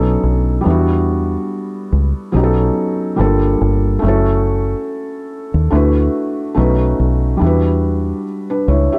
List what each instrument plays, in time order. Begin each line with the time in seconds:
Already playing: fingered electric bass B1, felt piano F#3 B3 C#4 D#4 A4
0.24 fingered electric bass B1
0.61 felt piano G3 B3
0.65 fingered electric bass E2, felt piano D4 E4
0.70 felt piano F#4
1.92 fingered electric bass C#2
2.32 fingered electric bass B1, felt piano F#3 B3 C#4 D#4
2.37 felt piano G4
2.43 felt piano A4
3.16 fingered electric bass G1, felt piano G3 A#3 D4 F4
3.20 felt piano A4
3.61 fingered electric bass G1
3.99 felt piano A3 C#4
4.03 fingered electric bass F#1, felt piano E4 F#4
4.08 felt piano A4
5.54 fingered electric bass D#2
5.70 fingered electric bass D2, felt piano A3 D4 E4 F#4
5.75 felt piano B4
6.54 fingered electric bass B1, felt piano A3 C#4 D#4 F#4
6.59 felt piano B4
6.99 fingered electric bass B1
7.37 felt piano G3 D4
7.41 fingered electric bass E2, felt piano E4 F#4
7.46 felt piano B4
8.50 felt piano D4 B4
8.68 fingered electric bass C#2, felt piano E4 C#5
8.92 felt piano G4 E5